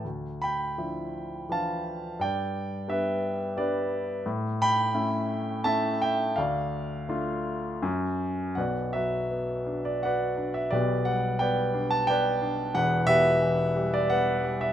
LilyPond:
<<
  \new Staff \with { instrumentName = "Grand piano" } { \time 3/4 \key d \dorian \tempo 4 = 86 << { r8 b''4. a''4 | g''4 e''4 d''8. r16 | r8 b''4. a''8 g''8 | f''2 r4 |
\key b \minor fis''8 e''4~ e''16 d''16 fis''8. e''16 | d''8 fis''8 g''8. a''16 g''8. r16 | fis''8 e''4~ e''16 d''16 fis''8. e''16 | } \\ { r8 g''4. f''4 | d''4 b'4 b'8. r16 | r8 g''4. e''8 e''8 | d''2 r4 |
<b' d''>8 b'4. <b' d''>4 | <g' b'>4 <b' d''>4 <b' d''>4 | b'8 <g' b'>4. b'4 | } >> }
  \new Staff \with { instrumentName = "Grand piano" } { \time 3/4 \key d \dorian d,4 <f d' e'>4 <e f d'>4 | g,4 <g b d'>4 <g b d'>4 | a,4 <a cis' e'>4 <a cis' e'>4 | d,4 <a d' f'>4 fis,4 |
\key b \minor <b,, b,>8 fis8 b8 d'8 fis'8 d'8 | <b,, b,>8 g8 b8 d'8 b8 d'8 | <e,, e,>8 b,8 e8 g8 b8 g8 | }
>>